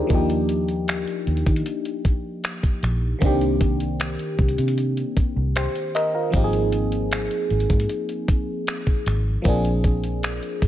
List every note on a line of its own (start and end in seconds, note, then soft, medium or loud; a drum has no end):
0.00 0.11 D4 medium
0.00 0.12 D#4 medium
0.00 0.12 F4 medium
0.00 0.13 G4 medium
0.00 0.12 G#4 medium
0.00 0.12 A#4 medium
0.00 0.12 C5 medium
0.07 1.04 D#2 medium
0.07 3.16 F3 medium
0.07 3.17 A#3 medium
0.07 3.18 D4 medium
0.07 kick loud
0.07 closed hi-hat medium
0.13 3.19 D#4 medium
0.13 3.20 G4 medium
0.30 closed hi-hat soft
0.49 closed hi-hat medium
0.68 closed hi-hat soft
0.88 finger snap loud
0.88 closed hi-hat medium
1.07 closed hi-hat soft
1.27 1.42 D#2 medium
1.27 closed hi-hat soft
1.37 closed hi-hat soft
1.46 1.61 D#3 medium
1.46 kick medium
1.46 closed hi-hat medium
1.56 closed hi-hat medium
1.66 closed hi-hat medium
1.85 closed hi-hat soft
2.05 kick medium
2.05 closed hi-hat medium
2.44 finger snap loud
2.44 closed hi-hat medium
2.63 kick medium
2.63 closed hi-hat soft
2.83 3.12 A#1 medium
2.83 finger snap medium
2.83 closed hi-hat medium
3.19 4.15 C2 medium
3.19 3.27 D3 medium
3.19 6.29 A#3 medium
3.19 6.30 C4 medium
3.19 kick loud
3.19 closed hi-hat medium
3.24 6.31 D#3 medium
3.24 6.31 D4 medium
3.24 5.15 G4 medium
3.41 closed hi-hat soft
3.61 kick medium
3.61 closed hi-hat medium
3.80 closed hi-hat soft
4.00 finger snap loud
4.00 closed hi-hat medium
4.19 closed hi-hat soft
4.39 4.53 C2 medium
4.39 kick medium
4.39 closed hi-hat soft
4.48 closed hi-hat soft
4.58 5.03 C3 medium
4.58 closed hi-hat medium
4.68 closed hi-hat medium
4.78 closed hi-hat medium
4.97 closed hi-hat soft
5.17 muted fingered electric bass stroke soft
5.17 kick medium
5.17 closed hi-hat medium
5.36 5.66 C2 medium
5.56 5.93 G4 medium
5.56 5.93 C5 medium
5.56 finger snap loud
5.56 closed hi-hat medium
5.75 closed hi-hat soft
5.95 6.13 A#4 medium
5.95 6.13 D#5 medium
5.95 finger snap medium
5.95 closed hi-hat medium
6.14 6.52 F4 medium
6.14 6.51 A#4 medium
6.30 7.27 G#1 loud
6.30 9.40 F3 medium
6.30 9.40 A#3 medium
6.30 9.41 C4 medium
6.30 kick loud
6.30 closed hi-hat medium
6.36 9.42 D#4 medium
6.36 6.42 G4 medium
6.44 9.46 G#4 medium
6.53 closed hi-hat soft
6.72 closed hi-hat medium
6.92 closed hi-hat soft
7.12 finger snap loud
7.12 closed hi-hat medium
7.31 closed hi-hat soft
7.50 7.65 G#1 medium
7.50 closed hi-hat soft
7.60 closed hi-hat soft
7.70 7.85 G#2 medium
7.70 kick medium
7.70 closed hi-hat medium
7.80 closed hi-hat medium
7.89 closed hi-hat medium
8.09 closed hi-hat soft
8.28 kick loud
8.28 closed hi-hat medium
8.67 finger snap loud
8.67 closed hi-hat medium
8.87 kick medium
8.87 closed hi-hat soft
9.06 9.36 G#1 medium
9.06 finger snap medium
9.06 closed hi-hat medium
9.42 10.39 A#1 loud
9.42 10.68 F3 medium
9.42 10.68 A#3 medium
9.42 10.68 C4 medium
9.42 kick loud
9.42 closed hi-hat medium
9.48 10.68 D4 medium
9.48 10.68 G#4 medium
9.65 closed hi-hat soft
9.84 kick loud
9.84 closed hi-hat medium
10.04 closed hi-hat soft
10.23 finger snap loud
10.23 closed hi-hat medium
10.43 closed hi-hat soft
10.62 10.68 A#1 medium
10.62 kick medium
10.62 closed hi-hat medium